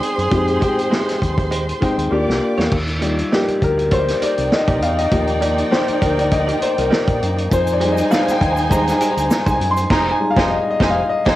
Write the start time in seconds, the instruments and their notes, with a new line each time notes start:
Already playing: grand piano G#3 C4 D#4 G#4 G5, tenor saxophone G#4, violin section C5 C6, celesta D5
0.03 closed hi-hat
0.16 fingered electric bass F#2, muted clean electric guitar stroke, closed hi-hat
0.31 fingered electric bass F2, grand piano G#3 C4 D#4 G4, kick, closed hi-hat
0.48 closed hi-hat
0.60 clean electric guitar G#3 D#4 G4 C5, grand piano G#3 C4 D#4 G5, kick, closed hi-hat
0.79 closed hi-hat
0.90 clean electric guitar G#3 D#4 G4 C5, snare
1.09 snare, closed hi-hat
1.21 fingered electric bass D#2, muted clean electric guitar stroke, kick, closed hi-hat
1.38 muted clean electric guitar stroke, kick, closed hi-hat
1.51 clean electric guitar G#3 D#4 G4 C5, closed hi-hat
1.68 muted clean electric guitar stroke, closed hi-hat
1.81 grand piano G#3 C4 D#4 G5, clean electric guitar G#3 D#4 G4 C5, kick, closed hi-hat
1.98 fingered electric bass D#2, muted clean electric guitar stroke, closed hi-hat
2.11 fingered electric bass D#2, grand piano A#3 D4 F4 G4, violin section D5 D6, muted clean electric guitar stroke
2.27 fingered electric bass C2, muted clean electric guitar stroke, snare
2.58 fingered electric bass E2, clean electric guitar A#3 F4 G4 D5, snare
2.72 fingered electric bass D#2, kick, crash
2.87 closed hi-hat
3.01 grand piano G3 D#4 F4, clean electric guitar A#3 D#4 G4 D5, closed hi-hat
3.18 closed hi-hat
3.32 clean electric guitar A#3 D#4 G4 D5, grand piano G4, celesta A#4, snare
3.48 muted fingered electric bass stroke, closed hi-hat
3.61 fingered electric bass D2, grand piano A#4, muted clean electric guitar stroke, kick, closed hi-hat
3.78 muted clean electric guitar stroke, closed hi-hat
3.91 clean electric guitar A#3 D#4 G4 D5, violin section D#4 D5 G5, grand piano C5, kick, closed hi-hat
4.07 muted clean electric guitar stroke, snare, closed hi-hat
4.22 clean electric guitar A#3 D#4 G4 D5, grand piano D5, muted fingered electric bass stroke, closed hi-hat
4.38 fingered electric bass C2, closed hi-hat
4.52 grand piano D#5, muted clean electric guitar stroke, snare
4.68 fingered electric bass A#1, clean electric guitar A#3 D#4 G4 D5, kick, closed hi-hat
4.82 fingered electric bass E2, grand piano F5, closed hi-hat
4.97 grand piano D#5, muted clean electric guitar stroke, closed hi-hat
5.11 fingered electric bass D#2, grand piano F3 A#3 G4, kick, closed hi-hat
5.27 closed hi-hat
5.41 clean electric guitar A#3 D#4 G4 D5, grand piano D5, closed hi-hat
5.58 closed hi-hat
5.71 clean electric guitar A#3 D#4 G4 D5, grand piano C5, snare
5.88 muted fingered electric bass stroke, closed hi-hat
6.02 fingered electric bass D2, grand piano A#4, kick, closed hi-hat
6.18 grand piano D5, muted clean electric guitar stroke, closed hi-hat
6.31 grand piano D#5, muted clean electric guitar stroke, kick, closed hi-hat
6.47 clean electric guitar A#3 D#4 G4 D5, closed hi-hat
6.61 grand piano C5, muted clean electric guitar stroke, muted fingered electric bass stroke, closed hi-hat
6.77 fingered electric bass C2, grand piano A#4, muted clean electric guitar stroke, closed hi-hat
6.90 clean electric guitar A#3 D#4 G4 D5, snare
7.08 fingered electric bass A#1, kick, closed hi-hat
7.21 fingered electric bass F#2, muted clean electric guitar stroke, closed hi-hat
7.37 muted clean electric guitar stroke, closed hi-hat
7.51 fingered electric bass F2, violin section D#4 C5 G#5, grand piano C5, kick, closed hi-hat, shaker
7.67 closed hi-hat, shaker
7.73 grand piano D5
7.80 grand piano G3 G#3 D#4, clean electric guitar G#3 D#4 G4 C5, closed hi-hat
7.92 grand piano D#5
7.97 closed hi-hat, shaker
8.10 clean electric guitar G3 D4 F#4 B4, grand piano F5, snare, shaker
8.22 clean electric guitar G#3 D#4 G4 C5
8.28 grand piano G5, muted fingered electric bass stroke, snare, closed hi-hat, shaker
8.40 fingered electric bass D#2, muted clean electric guitar stroke, kick, closed hi-hat
8.52 grand piano G#5
8.56 muted clean electric guitar stroke, closed hi-hat, shaker
8.70 grand piano G3 G#3 D#4 A#5, clean electric guitar G#3 D#4 G4 C5, kick, closed hi-hat, shaker
8.86 muted clean electric guitar stroke, snare, closed hi-hat, shaker
8.91 grand piano G#5
9.00 clean electric guitar G#3 D#4 G4 C5, muted fingered electric bass stroke, closed hi-hat, shaker
9.11 grand piano A#5
9.16 fingered electric bass D2, muted clean electric guitar stroke, closed hi-hat, shaker
9.30 muted clean electric guitar stroke, snare, shaker
9.46 fingered electric bass C2, clean electric guitar G#3 D#4 G4 C5, kick, closed hi-hat, shaker
9.50 grand piano G#5
9.60 fingered electric bass F#2, muted clean electric guitar stroke, closed hi-hat
9.71 grand piano C6
9.77 muted clean electric guitar stroke, closed hi-hat, shaker
9.90 fingered electric bass F1, clean electric guitar G#3 D#4 G4 C5, violin section D#4 C5 G#5, grand piano A#5, kick, snare, crash
10.11 grand piano G#5
10.20 grand piano G3 G#3 D#4
10.31 grand piano F5
10.36 fingered electric bass F1, clean electric guitar G#3 D#4 G4 C5, violin section D#4 C5 G#5, kick, snare
10.50 grand piano D#5
10.71 grand piano D#5
10.80 fingered electric bass F1, clean electric guitar G#3 D#4 G4 C5, violin section D#4 C5 G#5, kick, snare
10.90 grand piano F5
11.09 grand piano D#5
11.25 fingered electric bass F1, clean electric guitar G#3 D#4 G4 C5, violin section D#4 C5 G#5, kick, snare, crash
11.30 grand piano D#5